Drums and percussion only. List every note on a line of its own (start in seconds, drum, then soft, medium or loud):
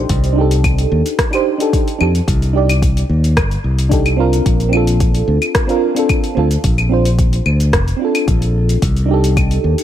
0.09 kick loud
0.09 open hi-hat medium
0.09 shaker medium
0.24 open hi-hat soft
0.24 shaker soft
0.51 open hi-hat soft
0.51 shaker medium
0.64 kick loud
0.64 open hi-hat medium
0.64 claves medium
0.64 shaker medium
0.78 open hi-hat soft
0.78 shaker soft
1.06 open hi-hat soft
1.06 shaker medium
1.19 kick loud
1.19 cross-stick medium
1.19 open hi-hat medium
1.19 shaker medium
1.33 open hi-hat soft
1.33 claves medium
1.33 shaker soft
1.60 open hi-hat soft
1.60 shaker medium
1.73 kick loud
1.73 open hi-hat medium
1.73 shaker medium
1.88 open hi-hat soft
1.88 shaker soft
2.01 claves medium
2.15 open hi-hat soft
2.15 shaker medium
2.28 kick loud
2.28 open hi-hat medium
2.28 shaker medium
2.42 open hi-hat soft
2.42 shaker soft
2.69 open hi-hat soft
2.69 claves medium
2.69 shaker medium
2.82 kick loud
2.82 open hi-hat medium
2.82 shaker medium
2.97 open hi-hat soft
2.97 shaker soft
3.24 open hi-hat soft
3.24 shaker medium
3.37 kick loud
3.37 cross-stick medium
3.37 open hi-hat medium
3.37 claves medium
3.37 shaker medium
3.51 open hi-hat soft
3.51 shaker soft
3.79 open hi-hat soft
3.79 shaker medium
3.91 kick loud
3.91 open hi-hat medium
3.91 shaker medium
4.06 open hi-hat soft
4.06 claves medium
4.06 shaker soft
4.33 open hi-hat soft
4.33 shaker medium
4.46 kick loud
4.46 open hi-hat medium
4.46 shaker medium
4.60 open hi-hat soft
4.60 shaker soft
4.73 claves medium
4.87 open hi-hat soft
4.87 shaker medium
5.00 kick loud
5.00 open hi-hat medium
5.00 shaker medium
5.15 open hi-hat soft
5.15 shaker soft
5.42 open hi-hat soft
5.42 claves medium
5.42 shaker medium
5.55 kick loud
5.55 cross-stick medium
5.55 open hi-hat medium
5.55 shaker medium
5.69 open hi-hat soft
5.69 shaker soft
5.96 open hi-hat soft
5.96 shaker medium
6.09 kick loud
6.09 open hi-hat medium
6.09 claves medium
6.09 shaker medium
6.24 open hi-hat soft
6.24 shaker soft
6.51 open hi-hat soft
6.51 shaker medium
6.64 kick loud
6.64 open hi-hat medium
6.64 shaker medium
6.78 open hi-hat soft
6.78 claves medium
6.78 shaker soft
7.05 open hi-hat soft
7.05 shaker medium
7.19 kick loud
7.19 open hi-hat medium
7.19 shaker medium
7.33 open hi-hat soft
7.33 shaker soft
7.46 claves medium
7.60 open hi-hat soft
7.60 shaker medium
7.73 kick loud
7.73 cross-stick medium
7.73 open hi-hat medium
7.73 shaker medium
7.88 open hi-hat soft
7.88 shaker soft
8.15 open hi-hat soft
8.15 claves medium
8.15 shaker medium
8.28 kick loud
8.28 open hi-hat medium
8.28 shaker medium
8.42 open hi-hat soft
8.42 shaker soft
8.69 open hi-hat soft
8.69 shaker medium
8.82 kick loud
8.82 open hi-hat medium
8.82 shaker medium
8.96 open hi-hat soft
8.96 shaker soft
9.24 open hi-hat soft
9.24 shaker medium
9.37 kick loud
9.37 open hi-hat medium
9.37 claves medium
9.37 shaker medium
9.51 open hi-hat soft
9.51 shaker soft
9.78 open hi-hat soft
9.78 shaker medium